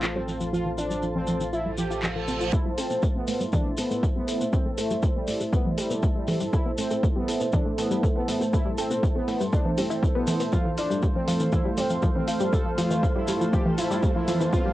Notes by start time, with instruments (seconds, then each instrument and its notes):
Already playing: analog synth bass A1, analog synth pad A3 A4 C5 F5, ambient pad F4 A4 C5 A5
0.03 synth arpeggio sound F4, clap, maracas
0.15 synth arpeggio sound G3, analog polysynth C4
0.28 synth arpeggio sound F3, maracas
0.40 synth arpeggio sound F3, maracas
0.53 synth arpeggio sound F3, analog polysynth F4, maracas
0.65 synth arpeggio sound E3
0.78 analog polysynth D4, synth arpeggio sound F4, maracas
0.90 synth arpeggio sound G3, maracas
1.02 synth arpeggio sound F3, maracas
1.15 synth arpeggio sound F3, analog polysynth C4
1.27 synth arpeggio sound F3, maracas
1.40 synth arpeggio sound E3, maracas
1.53 analog polysynth E4, synth arpeggio sound F4, reverse cymbal, maracas
1.66 synth arpeggio sound G3
1.78 synth arpeggio sound F3, analog polysynth G4, maracas
1.91 synth arpeggio sound F4, maracas
2.03 synth arpeggio sound F3, clap, maracas
2.15 synth arpeggio sound F3, analog polysynth A4
2.28 synth arpeggio sound C4, maracas
2.41 synth arpeggio sound F4, maracas
2.53 analog synth pad A3 A4 C5 E5, synth arpeggio sound A3, ambient pad E4, analog polysynth E4, kick, maracas
2.66 synth arpeggio sound G3
2.73 ambient pad A4
2.78 analog polysynth C4, synth arpeggio sound A4, open hi-hat, maracas
2.90 synth arpeggio sound B3, maracas
3.03 synth arpeggio sound A3, kick, maracas
3.15 synth arpeggio sound A3, analog polysynth B3
3.28 synth arpeggio sound A3, open hi-hat, maracas
3.40 synth arpeggio sound G3, maracas
3.52 analog polysynth D4, synth arpeggio sound A4, kick, low conga, maracas
3.65 synth arpeggio sound B3
3.77 synth arpeggio sound A3, analog polysynth B3, open hi-hat, maracas
3.90 synth arpeggio sound A3, maracas
4.03 synth arpeggio sound A3, kick, maracas
4.15 synth arpeggio sound G3, analog polysynth B3
4.28 synth arpeggio sound A4, open hi-hat, maracas
4.41 synth arpeggio sound B3, maracas
4.53 synth arpeggio sound A3, analog polysynth C4, kick, maracas
4.66 synth arpeggio sound A3
4.78 analog polysynth A3, synth arpeggio sound A3, open hi-hat, maracas
4.91 synth arpeggio sound G3, maracas
5.03 synth arpeggio sound A4, kick, maracas
5.15 analog polysynth G3, synth arpeggio sound B3
5.28 synth arpeggio sound A3, open hi-hat, maracas
5.41 synth arpeggio sound A3, maracas
5.53 synth arpeggio sound A3, analog polysynth B3, kick, maracas
5.65 synth arpeggio sound G3, low conga
5.78 analog polysynth G3, synth arpeggio sound A4, open hi-hat, maracas
5.90 synth arpeggio sound B3, maracas
6.03 synth arpeggio sound A3, kick, maracas
6.15 analog polysynth G3, synth arpeggio sound A3
6.27 synth arpeggio sound A3, open hi-hat, low conga, maracas
6.40 synth arpeggio sound G3, maracas
6.53 analog polysynth E4, synth arpeggio sound A4, kick, maracas
6.66 synth arpeggio sound B3
6.78 synth arpeggio sound A3, analog polysynth C4, open hi-hat, maracas
6.90 synth arpeggio sound A3, maracas
7.03 synth arpeggio sound A3, kick, maracas
7.16 synth arpeggio sound G3, analog polysynth B3
7.28 synth arpeggio sound A4, open hi-hat, maracas
7.40 synth arpeggio sound B3, maracas
7.52 synth arpeggio sound A3, analog polysynth D4, kick, low conga, maracas
7.66 synth arpeggio sound A3
7.78 synth arpeggio sound A3, analog polysynth B3, open hi-hat, maracas
7.90 synth arpeggio sound G3, maracas
8.03 synth arpeggio sound A4, kick, maracas
8.16 synth arpeggio sound B3, analog polysynth B3
8.28 synth arpeggio sound A3, open hi-hat, maracas
8.40 synth arpeggio sound A3, maracas
8.53 synth arpeggio sound A3, analog polysynth E4, kick, maracas
8.65 synth arpeggio sound G3
8.78 analog polysynth C4, synth arpeggio sound A4, open hi-hat, maracas
8.90 synth arpeggio sound B3, maracas
9.03 synth arpeggio sound A3, kick, maracas
9.15 synth arpeggio sound A3, analog polysynth B3
9.28 synth arpeggio sound A3, open hi-hat, maracas
9.40 synth arpeggio sound G3, maracas
9.53 analog polysynth D4, synth arpeggio sound A4, kick, maracas
9.65 synth arpeggio sound B3, low conga
9.78 synth arpeggio sound G3, analog polysynth C4, open hi-hat, maracas
9.90 synth arpeggio sound E4, maracas
10.03 synth arpeggio sound E4, kick, maracas
10.15 synth arpeggio sound B3, analog polysynth B3
10.27 synth arpeggio sound A4, open hi-hat, low conga, maracas
10.40 synth arpeggio sound B3, open hi-hat, maracas
10.53 synth arpeggio sound F3, ambient pad A3, analog polysynth F4, analog synth pad F5, kick, riser, maracas
10.65 synth arpeggio sound E3
10.71 ambient pad C5
10.75 analog polysynth D4, ambient pad F4, synth arpeggio sound F4, open hi-hat, maracas
10.90 synth arpeggio sound G3, maracas
11.03 synth arpeggio sound G3, kick, maracas
11.15 synth arpeggio sound F3, analog polysynth C4
11.28 synth arpeggio sound F3, open hi-hat, maracas
11.39 synth arpeggio sound E3, ambient pad A5, maracas
11.52 analog polysynth E4, synth arpeggio sound F4, kick, low conga, maracas
11.65 synth arpeggio sound G3
11.78 synth arpeggio sound G3, analog polysynth C4, open hi-hat, maracas
11.90 synth arpeggio sound F3, maracas
12.02 synth arpeggio sound F3, kick, maracas
12.15 synth arpeggio sound E3, analog polysynth C4
12.28 synth arpeggio sound F4, open hi-hat, maracas
12.40 synth arpeggio sound G3, maracas
12.53 synth arpeggio sound G3, analog polysynth A4, kick, maracas
12.65 synth arpeggio sound F3
12.78 synth arpeggio sound F3, analog polysynth F4, open hi-hat, maracas
12.90 synth arpeggio sound E3, maracas
13.03 synth arpeggio sound F4, kick, maracas
13.15 synth arpeggio sound G3, analog polysynth E4
13.27 synth arpeggio sound G3, open hi-hat, maracas
13.41 synth arpeggio sound F3, maracas
13.53 synth arpeggio sound F3, analog polysynth G4, kick, maracas
13.65 synth arpeggio sound E3, low conga
13.78 analog polysynth E4, synth arpeggio sound F4, open hi-hat, maracas
13.91 synth arpeggio sound G3, maracas
14.03 synth arpeggio sound G3, kick, maracas
14.16 synth arpeggio sound F3, analog polysynth E4
14.28 synth arpeggio sound F3, open hi-hat, low conga, maracas
14.41 synth arpeggio sound E3, maracas
14.53 synth arpeggio sound F4, analog polysynth F4, analog synth pad G5, kick, maracas
14.66 synth arpeggio sound G3